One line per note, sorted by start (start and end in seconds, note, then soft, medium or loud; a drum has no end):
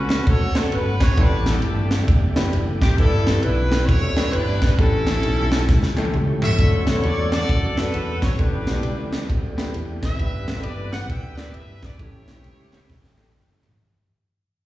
0.00 0.20 C#2 medium
0.00 1.14 F#3 medium
0.00 1.14 A3 medium
0.00 0.24 C#4 medium
0.00 0.26 F#4 medium
0.00 1.13 F#4 medium
0.00 0.28 B4 loud
0.00 1.13 C#5 medium
0.09 snare loud
0.09 clap loud
0.09 ride bell medium
0.27 0.65 D2 loud
0.27 1.14 F#4 loud
0.27 0.56 A4 medium
0.27 0.56 C#5 loud
0.27 kick loud
0.27 ride bell medium
0.55 1.03 A3 medium
0.55 1.03 C#4 medium
0.55 1.03 D4 medium
0.55 1.03 F#4 medium
0.55 0.60 G#4 medium
0.55 0.73 A4 medium
0.55 snare loud
0.55 clap loud
0.55 ride bell medium
0.61 1.06 A4 medium
0.72 1.11 G1 loud
0.72 1.02 B4 loud
0.72 ride bell medium
1.01 1.18 C#5 loud
1.01 kick medium
1.01 snare loud
1.01 clap loud
1.01 ride bell medium
1.17 1.63 A1 loud
1.17 1.87 A2 medium
1.17 2.94 E3 medium
1.17 2.94 G3 medium
1.17 2.95 A3 medium
1.17 1.87 A3 medium
1.17 2.94 D4 medium
1.17 1.87 D4 medium
1.17 1.62 D4 medium
1.17 1.87 E4 medium
1.17 1.24 F#4 medium
1.17 1.87 G4 medium
1.17 2.05 G4 medium
1.17 1.87 A4 medium
1.17 1.48 B4 loud
1.17 kick loud
1.17 ride bell medium
1.22 2.97 G4 medium
1.46 1.63 A4 medium
1.46 snare loud
1.46 clap loud
1.46 ride bell medium
1.62 2.01 G1 loud
1.62 2.49 D4 medium
1.62 2.49 E4 medium
1.62 2.05 A4 medium
1.62 ride bell medium
1.91 snare loud
1.91 clap medium
1.91 ride bell medium
2.08 2.46 F#1 loud
2.08 kick loud
2.08 ride bell medium
2.36 2.84 A3 medium
2.36 2.40 C#4 medium
2.36 2.84 E4 medium
2.36 2.84 G4 medium
2.36 2.84 B4 loud
2.36 snare loud
2.36 clap medium
2.36 ride bell medium
2.42 2.87 D4 medium
2.53 2.91 F#1 loud
2.53 ride bell medium
2.81 2.97 G4 loud
2.81 kick medium
2.81 snare loud
2.81 clap loud
2.81 ride bell medium
2.97 3.37 G1 loud
2.97 3.68 G2 medium
2.97 4.76 E3 medium
2.97 4.76 G3 medium
2.97 3.68 B3 medium
2.97 4.76 B3 medium
2.97 3.43 D4 medium
2.97 3.68 D4 medium
2.97 4.76 D4 medium
2.97 3.43 E4 medium
2.97 3.68 E4 medium
2.97 3.06 F#4 medium
2.97 3.68 G4 medium
2.97 3.39 A4 loud
2.97 3.06 A4 medium
2.97 kick loud
2.97 ride bell medium
3.04 4.77 G4 medium
3.04 3.71 B4 medium
3.27 snare loud
3.27 clap loud
3.27 ride bell medium
3.42 3.82 B1 loud
3.42 4.30 D4 medium
3.42 3.88 E4 medium
3.42 3.88 B4 loud
3.42 ride bell medium
3.72 snare loud
3.72 clap loud
3.72 ride bell medium
3.87 4.27 D2 loud
3.87 4.34 E4 medium
3.87 4.33 C#5 loud
3.87 kick loud
3.87 ride bell medium
4.17 4.64 B3 medium
4.17 4.64 D4 medium
4.17 4.64 E4 medium
4.17 4.64 G4 medium
4.17 4.64 B4 medium
4.17 snare loud
4.17 clap loud
4.17 ride bell medium
4.32 4.73 G1 medium
4.32 4.76 D4 medium
4.32 4.76 E4 medium
4.32 4.78 B4 loud
4.32 ride bell medium
4.62 kick medium
4.62 snare loud
4.62 clap loud
4.62 ride bell medium
4.77 5.17 A1 loud
4.77 5.49 A2 medium
4.77 6.55 E3 medium
4.77 6.55 G3 medium
4.77 6.55 A3 medium
4.77 5.48 A3 medium
4.77 6.55 C#4 medium
4.77 5.48 C#4 medium
4.77 6.11 C#4 medium
4.77 5.48 E4 medium
4.77 6.11 E4 medium
4.77 6.55 G4 medium
4.77 5.48 G4 medium
4.77 6.13 A4 loud
4.77 5.48 A4 medium
4.77 kick loud
4.77 ride bell medium
5.07 snare loud
5.07 clap loud
5.07 ride bell medium
5.23 5.69 B1 medium
5.23 ride bell medium
5.52 snare loud
5.52 clap loud
5.52 ride bell medium
5.69 6.07 C#2 loud
5.69 kick loud
5.69 snare medium
5.83 snare medium
5.97 6.45 A3 loud
5.97 6.45 C#4 medium
5.97 6.44 E4 medium
5.97 6.45 G4 medium
5.97 6.45 A4 loud
5.97 clap loud
6.05 high tom medium
6.14 6.52 C#2 loud
6.14 mid tom medium
6.42 7.29 A4 medium
6.42 7.29 C#5 medium
6.42 6.85 E5 loud
6.42 clap loud
6.42 floor tom loud
6.51 floor tom medium
6.58 6.83 D2 loud
6.58 7.29 D3 medium
6.58 8.36 D3 medium
6.58 8.36 F#3 medium
6.58 8.36 A3 medium
6.58 6.89 A3 medium
6.58 6.89 C#4 medium
6.58 6.89 D4 medium
6.58 8.35 F#4 medium
6.58 6.89 F#4 medium
6.58 6.89 A4 medium
6.58 kick loud
6.58 ride bell medium
6.87 7.04 C#2 medium
6.87 snare loud
6.87 clap medium
6.87 ride bell medium
6.95 7.48 A3 medium
6.95 7.48 C#4 medium
6.95 7.49 D4 medium
6.95 7.49 F#4 medium
6.95 7.49 B4 medium
7.03 7.42 E2 medium
7.03 7.30 D5 loud
7.03 ride bell medium
7.32 7.77 F#4 medium
7.32 8.19 A4 loud
7.32 7.74 D5 loud
7.32 snare loud
7.32 clap medium
7.32 ride bell medium
7.49 7.87 F#2 loud
7.49 kick loud
7.49 ride bell medium
7.77 8.25 A3 medium
7.77 8.24 C#4 medium
7.77 8.24 D4 medium
7.77 7.81 E4 medium
7.77 8.35 F#4 medium
7.77 8.24 A4 medium
7.77 8.23 B4 loud
7.77 snare loud
7.77 clap loud
7.77 ride bell medium
7.82 8.27 F#4 medium
7.94 8.33 E2 loud
7.94 ride bell medium
8.22 8.39 C#5 loud
8.22 kick medium
8.22 snare loud
8.22 clap loud
8.22 ride bell medium
8.39 8.64 A1 medium
8.39 9.09 A2 medium
8.39 10.16 E3 medium
8.39 10.16 G3 medium
8.39 8.69 A3 medium
8.39 10.16 A3 medium
8.39 8.69 D4 medium
8.39 10.16 D4 medium
8.39 9.26 D4 medium
8.39 8.69 E4 medium
8.39 8.46 F#4 medium
8.39 8.69 G4 medium
8.39 9.26 G4 medium
8.39 8.69 A4 loud
8.39 9.29 B4 loud
8.39 kick loud
8.39 ride bell medium
8.45 10.18 G4 medium
8.67 8.82 B1 loud
8.67 snare loud
8.67 clap loud
8.67 ride bell medium
8.75 9.29 A3 medium
8.75 8.80 C#4 medium
8.75 9.29 E4 medium
8.75 9.28 G4 medium
8.75 9.29 A4 medium
8.80 9.31 D4 medium
8.80 ride bell medium
8.85 9.23 C#2 medium
9.13 snare loud
9.13 clap medium
9.13 ride bell medium
9.29 9.68 D2 loud
9.29 kick loud
9.29 ride bell medium
9.57 10.05 A3 medium
9.57 10.05 D4 medium
9.57 10.05 E4 medium
9.57 10.05 G4 medium
9.57 10.05 B4 loud
9.57 snare loud
9.57 clap loud
9.57 ride bell medium
9.74 10.13 E2 medium
9.74 ride bell medium
10.03 10.90 B4 medium
10.03 10.61 E5 loud
10.03 kick loud
10.03 snare loud
10.03 clap loud
10.03 ride bell medium
10.19 10.44 G1 loud
10.19 10.89 G2 medium
10.19 11.96 E3 medium
10.19 11.96 G3 medium
10.19 10.26 A#3 soft
10.19 10.49 B3 medium
10.19 11.96 D4 medium
10.19 10.49 D4 medium
10.19 10.49 E4 medium
10.19 11.96 G4 medium
10.19 10.49 G4 medium
10.19 10.49 B4 medium
10.19 kick loud
10.19 ride bell medium
10.25 11.99 B3 medium
10.48 10.62 A1 loud
10.48 snare loud
10.48 clap medium
10.48 ride bell medium
10.56 11.09 B3 medium
10.56 11.09 D4 medium
10.56 11.09 E4 medium
10.56 11.09 G4 medium
10.56 10.60 A4 medium
10.61 11.10 G1 loud
10.61 11.12 B4 medium
10.61 10.93 D5 medium
10.61 ride bell medium
10.93 11.08 F#5 loud
10.93 snare loud
10.93 clap medium
10.93 ride bell medium
11.08 11.48 D2 loud
11.08 11.96 B4 medium
11.08 11.52 E5 medium
11.08 11.37 G5 loud
11.08 kick loud
11.08 ride bell medium
11.36 11.85 B3 medium
11.36 11.85 D4 medium
11.36 11.85 E4 medium
11.36 11.85 G4 medium
11.36 11.42 A#4 medium
11.36 11.54 D5 loud
11.36 snare loud
11.36 clap loud
11.36 ride bell medium
11.44 11.88 B4 medium
11.53 11.93 G1 medium
11.53 11.84 E5 loud
11.53 ride bell medium
11.83 11.99 D5 medium
11.83 kick medium
11.83 snare loud
11.83 clap loud
11.83 ride bell medium
11.98 12.24 A1 medium
11.98 12.69 A2 medium
11.98 13.76 E3 medium
11.98 13.76 G3 medium
11.98 13.76 A3 medium
11.98 12.29 A3 medium
11.98 13.76 C#4 medium
11.98 12.29 C#4 medium
11.98 12.29 E4 medium
11.98 13.31 E4 medium
11.98 12.07 F#4 medium
11.98 12.29 G4 medium
11.98 13.31 G4 medium
11.98 12.29 A4 medium
11.98 13.34 C#5 loud
11.98 kick loud
11.98 ride bell medium
12.05 13.79 G4 medium
12.28 12.42 B1 loud
12.28 snare loud
12.28 clap loud
12.28 ride bell medium
12.36 12.89 A3 medium
12.36 12.89 C#4 medium
12.36 12.89 E4 medium
12.36 12.89 G4 medium
12.36 12.89 B4 medium
12.44 12.89 C#2 loud
12.44 ride bell medium
12.73 12.89 E5 medium
12.73 snare loud
12.73 clap medium
12.73 ride bell medium
12.89 13.28 A1 loud
12.89 13.16 G5 medium
12.89 kick loud
12.89 snare medium
13.04 snare medium
13.16 13.65 A3 medium
13.16 13.65 C#4 medium
13.16 13.65 E4 medium
13.16 13.65 G4 medium
13.16 13.65 A4 medium
13.16 13.32 F#5 medium
13.16 clap loud
13.34 13.73 F#1 loud
13.34 13.76 G5 medium
13.34 13.61 G5 medium
13.63 13.78 E5 medium
13.63 clap loud
13.63 floor tom loud
13.72 floor tom loud